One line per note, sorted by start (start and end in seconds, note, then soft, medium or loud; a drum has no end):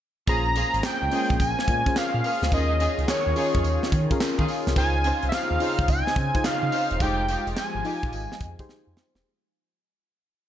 0.27 0.63 A#1 loud
0.27 2.50 G#3 medium
0.27 0.48 A#3 loud
0.27 2.50 A#3 medium
0.27 0.48 C#4 medium
0.27 4.72 C#4 medium
0.27 1.06 C#4 medium
0.27 0.48 F4 medium
0.27 1.06 F4 medium
0.27 0.48 G#4 loud
0.27 1.07 G#4 medium
0.27 1.07 C5 medium
0.27 0.87 A#5 loud
0.27 kick loud
0.27 closed hi-hat medium
0.27 tambourine medium
0.55 0.76 A#3 medium
0.55 0.76 C#4 medium
0.55 0.76 F4 medium
0.55 0.76 G#4 medium
0.55 closed hi-hat medium
0.55 tambourine medium
0.74 0.81 G#1 medium
0.74 closed hi-hat medium
0.83 1.40 G5 loud
0.83 snare loud
0.83 clap medium
0.83 closed hi-hat medium
0.83 tambourine medium
1.02 1.09 C#2 medium
1.11 1.32 A#3 medium
1.11 1.32 C#4 medium
1.11 1.77 C#4 medium
1.11 1.32 F4 medium
1.11 1.78 F4 medium
1.11 1.32 G#4 medium
1.11 1.78 G#4 medium
1.11 1.78 C5 medium
1.11 open hi-hat medium
1.11 tambourine medium
1.30 1.38 A#1 medium
1.30 kick medium
1.30 closed hi-hat soft
1.40 1.54 A#1 medium
1.40 1.99 G#5 loud
1.40 kick loud
1.40 closed hi-hat medium
1.40 tambourine medium
1.59 snare medium
1.68 1.82 A#2 loud
1.68 kick loud
1.68 closed hi-hat medium
1.86 2.47 C#4 medium
1.86 2.47 F4 medium
1.86 2.47 G#4 medium
1.86 2.48 C5 medium
1.86 kick medium
1.86 closed hi-hat medium
1.96 2.53 F5 medium
1.96 snare loud
1.96 clap loud
1.96 closed hi-hat medium
1.96 tambourine medium
2.14 2.21 A#2 loud
2.24 2.44 A#3 medium
2.24 2.44 C#4 medium
2.24 2.44 F4 medium
2.24 2.44 G#4 medium
2.24 open hi-hat medium
2.24 tambourine medium
2.42 2.49 D2 medium
2.42 snare medium
2.42 closed hi-hat medium
2.51 2.88 D#2 loud
2.51 4.74 D#3 medium
2.51 2.72 C#4 medium
2.51 3.31 C#4 medium
2.51 2.72 D#4 medium
2.51 6.96 F4 medium
2.51 2.72 F4 medium
2.51 3.31 F4 medium
2.51 4.74 G#4 medium
2.51 2.72 G#4 loud
2.51 3.31 G#4 medium
2.51 3.31 A#4 medium
2.51 3.05 D#5 loud
2.51 kick loud
2.51 closed hi-hat medium
2.51 tambourine medium
2.80 3.00 C#4 medium
2.80 3.00 D#4 medium
2.80 3.00 F4 medium
2.80 3.00 G#4 medium
2.80 closed hi-hat medium
2.80 tambourine medium
2.98 3.06 C#2 medium
2.98 closed hi-hat medium
3.08 4.17 C#5 medium
3.08 snare loud
3.08 clap loud
3.08 closed hi-hat medium
3.08 tambourine loud
3.27 3.34 D#2 medium
3.36 3.56 C#4 medium
3.36 4.02 C#4 medium
3.36 3.56 D#4 medium
3.36 4.02 F4 medium
3.36 3.56 F4 medium
3.36 3.56 G#4 medium
3.36 4.02 G#4 medium
3.36 4.02 C#5 medium
3.36 open hi-hat medium
3.36 tambourine medium
3.55 3.62 F2 medium
3.55 kick medium
3.55 closed hi-hat soft
3.64 3.78 D#2 loud
3.64 closed hi-hat medium
3.64 tambourine medium
3.83 snare medium
3.92 4.06 D#3 loud
3.92 kick medium
3.92 closed hi-hat medium
4.11 4.72 C#4 loud
4.11 4.72 F4 medium
4.11 4.72 G#4 medium
4.11 4.72 A#4 loud
4.11 kick loud
4.11 closed hi-hat medium
4.20 snare loud
4.20 clap loud
4.20 closed hi-hat medium
4.20 tambourine medium
4.38 4.46 D#3 loud
4.38 4.51 C#4 medium
4.38 4.51 D#4 medium
4.38 4.51 F4 medium
4.38 4.51 G#4 medium
4.38 kick medium
4.48 open hi-hat medium
4.48 tambourine medium
4.67 4.74 C2 medium
4.67 snare medium
4.67 closed hi-hat medium
4.76 5.12 C#2 loud
4.76 6.98 C#3 medium
4.76 6.98 C4 medium
4.76 4.96 C#4 loud
4.76 9.21 D#4 medium
4.76 5.55 D#4 medium
4.76 4.96 D#4 medium
4.76 5.55 F4 medium
4.76 4.97 F4 medium
4.76 5.55 G#4 medium
4.76 4.97 C5 loud
4.76 5.55 C5 medium
4.76 5.25 G#5 loud
4.76 kick loud
4.76 closed hi-hat medium
4.76 tambourine medium
5.04 5.24 C#4 medium
5.04 5.24 D#4 medium
5.04 5.24 F4 medium
5.04 5.25 C5 medium
5.04 closed hi-hat medium
5.04 tambourine medium
5.23 5.30 C2 medium
5.23 closed hi-hat medium
5.29 5.36 E5 medium
5.29 snare loud
5.29 closed hi-hat medium
5.29 tambourine medium
5.33 5.91 F5 loud
5.33 clap loud
5.51 5.58 D#2 medium
5.60 5.80 C#4 medium
5.60 6.26 D#4 medium
5.60 5.81 D#4 medium
5.60 6.26 F4 medium
5.60 5.81 F4 medium
5.60 6.26 G#4 medium
5.60 5.81 C5 medium
5.60 6.26 C5 medium
5.60 open hi-hat medium
5.60 tambourine medium
5.79 5.86 C#2 medium
5.79 kick medium
5.79 closed hi-hat medium
5.88 6.03 C#2 medium
5.88 6.47 G#5 loud
5.88 kick loud
5.88 closed hi-hat medium
5.88 tambourine medium
6.07 snare medium
6.16 6.30 C#3 loud
6.16 kick loud
6.16 closed hi-hat medium
6.35 6.96 D#4 medium
6.35 6.96 F4 medium
6.35 6.96 G#4 medium
6.35 6.96 C5 loud
6.35 kick loud
6.35 closed hi-hat medium
6.44 7.03 F5 loud
6.44 snare loud
6.44 clap loud
6.44 closed hi-hat medium
6.44 tambourine medium
6.63 6.70 C#3 loud
6.72 6.92 C#4 medium
6.72 6.93 D#4 medium
6.72 6.93 F4 medium
6.72 6.93 C5 medium
6.72 open hi-hat medium
6.72 tambourine medium
6.91 6.98 E1 medium
6.91 closed hi-hat medium
7.00 7.36 F1 loud
7.00 9.22 F3 medium
7.00 9.22 G#3 medium
7.00 7.21 G#3 loud
7.00 7.21 D#4 medium
7.00 7.79 D#4 medium
7.00 9.22 F4 medium
7.00 7.21 F4 medium
7.00 7.79 G4 medium
7.00 7.21 G4 loud
7.00 7.79 G#4 medium
7.00 7.80 C5 medium
7.00 7.57 G5 loud
7.00 kick loud
7.00 closed hi-hat medium
7.00 tambourine medium
7.28 7.49 G#3 medium
7.28 7.49 D#4 medium
7.28 7.49 F4 medium
7.28 7.49 G4 medium
7.28 closed hi-hat medium
7.28 tambourine medium
7.47 7.54 F1 medium
7.47 closed hi-hat medium
7.57 8.65 G#5 medium
7.57 snare loud
7.57 clap loud
7.57 closed hi-hat medium
7.57 tambourine loud
7.75 7.82 G#1 medium
7.84 8.05 G#3 medium
7.84 8.05 D#4 medium
7.84 8.50 D#4 medium
7.84 8.05 F4 medium
7.84 8.50 F4 medium
7.84 8.05 G4 medium
7.84 8.51 G#4 medium
7.84 8.51 D#5 medium
7.84 open hi-hat medium
7.84 tambourine medium
8.03 8.10 A#1 medium
8.03 kick medium
8.03 closed hi-hat medium
8.13 8.27 G#1 medium
8.13 closed hi-hat medium
8.13 tambourine medium
8.32 snare medium
8.41 8.55 F2 loud
8.41 kick loud
8.41 closed hi-hat medium
8.59 9.20 D#4 loud
8.59 9.20 G4 medium
8.59 9.20 G#4 loud
8.59 9.21 C5 loud
8.59 kick medium
8.59 closed hi-hat medium
8.69 snare medium
8.87 8.94 F2 loud
8.97 snare medium
9.15 9.22 E1 medium
9.15 snare loud